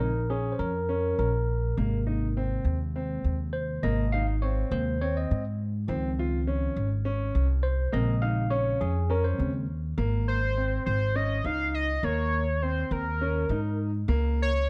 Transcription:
Already playing: upright bass A#1, tine electric piano C4
0.00 grand piano D#4, tine electric piano A#4
0.30 grand piano C#4, tine electric piano G#4
0.52 tine electric piano C5
0.59 upright bass F2, tine electric piano A#4
0.89 grand piano C#4
1.19 upright bass A#1, tine electric piano A#4
1.77 upright bass G#1, tine electric piano C3 G#3 A#3, grand piano A#3
2.07 grand piano D#4
2.37 grand piano C4
2.65 upright bass D#2
2.96 grand piano C4
3.24 upright bass D#2
3.53 tine electric piano C5
3.82 upright bass G#1, tine electric piano C3 G#3 A#3 D#5, grand piano A#3
4.12 grand piano D#4, tine electric piano F5
4.42 grand piano C4, tine electric piano C#5
4.71 upright bass D#2, tine electric piano C3 G#3 A#3 C5
5.01 grand piano C4, tine electric piano C#5
5.17 tine electric piano D#5
5.31 upright bass G#2
5.87 upright bass C#2, tine electric piano D#3 F3 C4, grand piano C4
6.19 grand piano F4
6.47 grand piano C#4
6.76 upright bass G#1
7.05 grand piano C#4
7.35 upright bass C2
7.63 tine electric piano C5
7.92 upright bass A#1, tine electric piano C#3 G#3 C4 D#5, grand piano A#3
8.22 grand piano D#4, tine electric piano F5
8.50 grand piano C#4, tine electric piano C#5
8.81 upright bass F2, tine electric piano G#4
9.10 grand piano C#4, tine electric piano A#4
9.24 tine electric piano C5
9.37 upright bass D#2, tine electric piano C#3 G#3 C4
9.98 upright bass G#1, grand piano A#3
10.28 analog synth lead C5 G6
10.57 grand piano C4
10.86 upright bass G#1, analog synth lead C5 G6
11.15 grand piano C#4, analog synth lead D#5 A#6
11.44 upright bass C#2, grand piano D#4, analog synth lead F5 C7
11.74 analog synth lead D#5 A#6
12.03 upright bass D#2, grand piano A#3, analog synth lead C#5 G#6
12.62 grand piano C4, analog synth lead C5 G6
12.91 upright bass D#2, analog synth lead A#4 F6
13.21 grand piano C#4
13.49 upright bass G#2, grand piano D#4
14.08 upright bass C#2, grand piano A#3
14.42 analog synth lead C#5 G#6

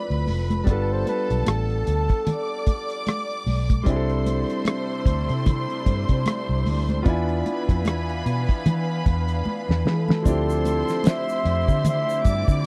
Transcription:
Already playing: grand piano F3 C4 D4 E4 A4, violin section B4 B5, flugelhorn D5
0.10 fingered electric bass D2, closed hi-hat
0.27 fingered electric bass F1, open hi-hat, high conga
0.50 cross-stick, closed hi-hat, high conga
0.64 fingered electric bass G1, grand piano G3 B3 D4, violin section A4 A5, kick, closed hi-hat, muted conga
0.68 grand piano F4 A4, flugelhorn B4
0.92 flugelhorn C5
1.07 flugelhorn B4, closed hi-hat, muted conga
1.30 fingered electric bass B1, cross-stick, closed hi-hat
1.47 fingered electric bass A1, flugelhorn A4, cross-stick, closed hi-hat, high conga
1.70 closed hi-hat
1.87 fingered electric bass D2, closed hi-hat
2.09 kick, closed hi-hat
2.26 violin section D5 D6, closed hi-hat, muted conga, low conga
2.67 kick, closed hi-hat, muted conga
2.90 closed hi-hat
3.07 cross-stick, closed hi-hat, high conga
3.30 closed hi-hat
3.46 fingered electric bass B1, open hi-hat, high conga
3.70 kick, closed hi-hat, high conga
3.83 fingered electric bass C2, string section C3 G3 A3 D4 E4, grand piano G3 C4 D4, violin section C5 C6, kick, closed hi-hat
3.88 grand piano E4 G#4
3.96 grand piano A4
4.09 closed hi-hat
4.26 closed hi-hat, muted conga
4.50 cross-stick, closed hi-hat
4.65 cross-stick, closed hi-hat, high conga
5.06 fingered electric bass D2, kick, closed hi-hat
5.29 fingered electric bass C3, closed hi-hat
5.46 kick, closed hi-hat, muted conga, low conga
5.70 closed hi-hat
5.86 fingered electric bass G2, kick, closed hi-hat, muted conga
6.09 fingered electric bass C3, kick, closed hi-hat
6.26 cross-stick, closed hi-hat, high conga
6.49 fingered electric bass C2
6.66 fingered electric bass D2, open hi-hat, high conga
6.89 cross-stick, closed hi-hat, high conga
7.03 fingered electric bass E2, string section E3 B3 F5 G#5, grand piano B3 D4 F4, violin section B4 B5, kick, closed hi-hat, muted conga
7.07 grand piano E4 G#5
7.29 closed hi-hat
7.46 closed hi-hat, muted conga
7.69 fingered electric bass F2, kick, cross-stick, closed hi-hat
7.85 fingered electric bass E2, cross-stick, closed hi-hat, high conga
8.09 closed hi-hat
8.26 fingered electric bass B2, closed hi-hat
8.49 kick, closed hi-hat
8.66 fingered electric bass E3, closed hi-hat, muted conga, low conga
9.06 fingered electric bass E2, kick, closed hi-hat, muted conga
9.28 closed hi-hat
9.45 muted fingered electric bass stroke, high conga
9.69 fingered electric bass E2, snare
9.86 fingered electric bass E3, flugelhorn A4, snare, high conga
10.08 snare, high conga
10.22 fingered electric bass D2, string section D3 A3 C4 D4 E4 G4, grand piano F3 C4 D4, violin section C5 C6, kick, closed hi-hat, muted conga, shaker
10.27 grand piano E4 G4
10.50 shaker
10.65 closed hi-hat, muted conga, shaker
10.88 snare, shaker
11.04 snare, closed hi-hat, high conga, shaker
11.08 flugelhorn E5
11.29 shaker
11.45 fingered electric bass F2, closed hi-hat
11.68 fingered electric bass D3, kick, shaker
11.85 flugelhorn E5, closed hi-hat, muted conga, low conga, shaker
12.09 shaker
12.25 fingered electric bass G2, violin section D5 D6, kick, closed hi-hat, muted conga, shaker
12.48 fingered electric bass D3, kick, shaker

